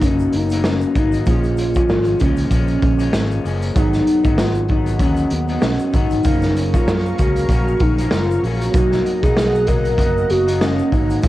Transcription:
Already playing: tine electric piano F#3 B3 D#4 A#4
0.01 fretless electric bass F#1, clean electric guitar B2 F#3 A#3, soft synth lead C#4, kick, closed hi-hat, shaker
0.06 clean electric guitar D#4
0.19 shaker
0.32 fretless electric bass F#1, soft synth lead D#4, closed hi-hat
0.49 clean electric guitar F#3 A#3 D#4, closed hi-hat, shaker
0.54 clean electric guitar B2
0.64 soft synth lead C#4, snare, shaker
0.81 shaker
0.95 fretless electric bass G#1, clean electric guitar B2 F#3 A#3 D#4, soft synth lead D#4, kick, closed hi-hat, shaker
1.12 closed hi-hat, shaker
1.25 fretless electric bass A#1, clean electric guitar A#2 F3 G#3, tine electric piano F3 A#3 C#4, soft synth lead F4, kick, closed hi-hat, shaker
1.30 clean electric guitar C#4, tine electric piano G#4
1.43 closed hi-hat, shaker
1.57 closed hi-hat, shaker
1.74 clean electric guitar A#2 F3 G#3 C#4, soft synth lead F4, kick, closed hi-hat, shaker
1.89 fretless electric bass G#1, snare, shaker
2.05 closed hi-hat, shaker
2.19 fretless electric bass C#2, clean electric guitar A#2 F3, soft synth lead C#4, kick, closed hi-hat, shaker
2.23 clean electric guitar G#3 C#4
2.36 closed hi-hat, shaker
2.51 fretless electric bass A#1, clean electric guitar A#2 F3 G#3 C#4, kick, closed hi-hat, shaker
2.67 closed hi-hat, shaker
2.82 fretless electric bass A#1, kick, closed hi-hat
2.99 clean electric guitar A#2 F3 G#3 C#4, closed hi-hat, shaker
3.13 fretless electric bass G#1, snare, shaker
3.31 closed hi-hat, shaker
3.44 fretless electric bass F#1, clean electric guitar A#2 F3 G#3 C#4, open hi-hat, shaker
3.62 closed hi-hat, shaker
3.74 fretless electric bass G#1, clean electric guitar D#3 F#3 B3, tine electric piano F#3 B3 D#4, soft synth lead D#4, kick, closed hi-hat, shaker
3.79 clean electric guitar D#4, tine electric piano G#4
3.93 snare, closed hi-hat, shaker
4.07 closed hi-hat, shaker
4.24 fretless electric bass G#1, clean electric guitar G#2 D#3 F#3 B3 D#4, kick, closed hi-hat, shaker
4.38 soft synth lead F4, snare, shaker
4.55 closed hi-hat, shaker
4.68 clean electric guitar D#3 F#3 B3, soft synth lead D#4, kick, closed hi-hat, shaker
4.72 clean electric guitar D#4
4.86 closed hi-hat, shaker
5.00 fretless electric bass D#2, clean electric guitar G#2 D#3 F#3 B3 D#4, soft synth lead C#4, kick, closed hi-hat, shaker
5.17 closed hi-hat, shaker
5.30 fretless electric bass D#2, soft synth lead B3, closed hi-hat
5.48 clean electric guitar G#2 D#3 F#3 B3 D#4, closed hi-hat, shaker
5.62 fretless electric bass B1, soft synth lead C#4, snare, shaker
5.79 closed hi-hat, shaker
5.93 fretless electric bass G#1, clean electric guitar D#3 F#3 B3 D#4, soft synth lead D#4, kick, closed hi-hat, shaker
6.11 fretless electric bass G#1, closed hi-hat, shaker
6.23 fretless electric bass F#1, clean electric guitar F3, tine electric piano F#3 C#4 F5, analog synth pad A#4 F5 A#5 C#6, kick, closed hi-hat, shaker
6.28 clean electric guitar A#3 C#4, tine electric piano A#4
6.42 snare, closed hi-hat, shaker
6.56 closed hi-hat, shaker
6.74 clean electric guitar F#2 C#3 F3 A#3 C#4, soft synth lead F4, kick, closed hi-hat, shaker
6.87 fretless electric bass F#2, snare, shaker
7.06 shaker
7.18 fretless electric bass C#2, clean electric guitar C#3 A#3 C#4, soft synth lead F#4, kick, closed hi-hat, shaker
7.36 closed hi-hat, shaker
7.49 fretless electric bass A#1, clean electric guitar F#2 C#3 A#3 C#4, kick, closed hi-hat, shaker
7.68 shaker
7.80 fretless electric bass A#1, soft synth lead D#4, kick, closed hi-hat
7.98 clean electric guitar F#2 C#3 F3 A#3 C#4, closed hi-hat, shaker
8.11 fretless electric bass F#1, soft synth lead F4, snare, shaker
8.31 shaker
8.43 fretless electric bass A#1, clean electric guitar C#3 A#3, soft synth lead F#4, open hi-hat, shaker
8.47 clean electric guitar C#4
8.61 closed hi-hat, shaker
8.71 fretless electric bass B1, tine electric piano F#3 B3 D#4, analog synth pad D#5 F#5, kick, closed hi-hat, shaker
8.75 clean electric guitar B2 F#3 A#3 D#4, tine electric piano A#4
8.92 snare, shaker
9.06 closed hi-hat, shaker
9.22 fretless electric bass B1, clean electric guitar B2 F#3 A#3 D#4, soft synth lead G#4, kick, closed hi-hat, shaker
9.36 snare, shaker
9.55 shaker
9.66 clean electric guitar B2 F#3 A#3, soft synth lead A#4, kick, closed hi-hat, shaker
9.71 clean electric guitar D#4
9.85 closed hi-hat, shaker
9.98 fretless electric bass F#1, clean electric guitar B2 F#3 A#3 D#4, kick, closed hi-hat, shaker
10.17 shaker
10.30 fretless electric bass F#1, soft synth lead F#4, closed hi-hat
10.47 clean electric guitar B2 F#3 A#3 D#4, closed hi-hat, shaker
10.61 soft synth lead C#4, snare, shaker
10.79 shaker
10.91 fretless electric bass G#1, clean electric guitar B2 F#3 A#3 D#4, soft synth lead D#4, kick, closed hi-hat, shaker
11.10 closed hi-hat, shaker
11.21 fretless electric bass A#1, clean electric guitar A#2 F3 G#3, tine electric piano G#3 A#3 C#4, soft synth lead F4, analog synth pad F5 G#5 C#6, kick, closed hi-hat, shaker

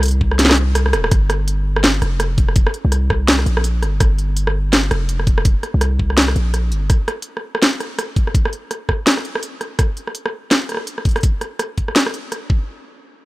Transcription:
Already playing: 808-style bass C2
0.03 closed hi-hat
0.06 closed hi-hat
0.08 closed hi-hat
0.21 kick
0.31 cross-stick
0.39 snare, closed hi-hat
0.45 snare
0.49 cross-stick, snare
0.57 closed hi-hat
0.75 cross-stick, closed hi-hat
0.86 cross-stick
0.93 808-style bass D#1, cross-stick, closed hi-hat
1.04 cross-stick
1.11 808-style bass G1, kick, cross-stick, closed hi-hat
1.30 cross-stick, closed hi-hat
1.48 closed hi-hat
1.76 cross-stick
1.84 snare, closed hi-hat
2.02 808-style bass F1, cross-stick, closed hi-hat
2.20 cross-stick, closed hi-hat
2.38 kick, closed hi-hat
2.48 cross-stick
2.56 kick, closed hi-hat
2.67 cross-stick
2.74 closed hi-hat
2.85 808-style bass C2
2.92 cross-stick, closed hi-hat
3.10 kick, cross-stick
3.28 snare, closed hi-hat
3.39 cross-stick
3.46 808-style bass A#1, closed hi-hat
3.57 cross-stick
3.64 closed hi-hat
3.83 808-style bass G1, cross-stick, closed hi-hat
4.00 808-style bass G1, kick, cross-stick, closed hi-hat
4.18 closed hi-hat
4.37 closed hi-hat
4.47 cross-stick
4.73 cross-stick, snare, closed hi-hat
4.91 808-style bass F1, cross-stick, closed hi-hat
5.09 closed hi-hat
5.20 cross-stick
5.27 kick, closed hi-hat
5.38 cross-stick
5.45 kick, closed hi-hat
5.63 cross-stick, closed hi-hat
5.74 808-style bass C2
5.81 cross-stick, closed hi-hat
5.99 kick
6.10 cross-stick
6.17 snare, closed hi-hat
6.28 cross-stick
6.36 808-style bass A#1, closed hi-hat
6.54 cross-stick, closed hi-hat
6.72 808-style bass G1, closed hi-hat
6.90 kick, cross-stick, closed hi-hat
7.08 cross-stick, closed hi-hat
7.22 closed hi-hat
7.37 cross-stick
7.55 cross-stick
7.62 snare, closed hi-hat
7.80 cross-stick, closed hi-hat
7.99 cross-stick, closed hi-hat
8.16 kick, closed hi-hat
8.27 cross-stick
8.35 kick, closed hi-hat
8.45 cross-stick
8.53 closed hi-hat
8.71 cross-stick, closed hi-hat
8.89 kick, cross-stick
9.07 snare, closed hi-hat
9.17 cross-stick
9.25 closed hi-hat
9.35 cross-stick
9.43 closed hi-hat
9.61 cross-stick, closed hi-hat
9.79 kick, cross-stick, closed hi-hat
9.97 closed hi-hat
10.07 cross-stick
10.15 closed hi-hat
10.26 cross-stick
10.51 cross-stick, snare, closed hi-hat
10.69 cross-stick, closed hi-hat
10.72 cross-stick
10.74 cross-stick
10.77 cross-stick
10.87 closed hi-hat
10.98 cross-stick
11.05 kick, closed hi-hat
11.09 closed hi-hat
11.11 closed hi-hat
11.16 cross-stick, closed hi-hat
11.21 closed hi-hat
11.23 kick, closed hi-hat
11.41 cross-stick, closed hi-hat
11.59 cross-stick, closed hi-hat
11.78 kick, closed hi-hat
11.88 cross-stick
11.96 snare, closed hi-hat
12.06 cross-stick
12.14 closed hi-hat
12.32 cross-stick, closed hi-hat
12.50 kick

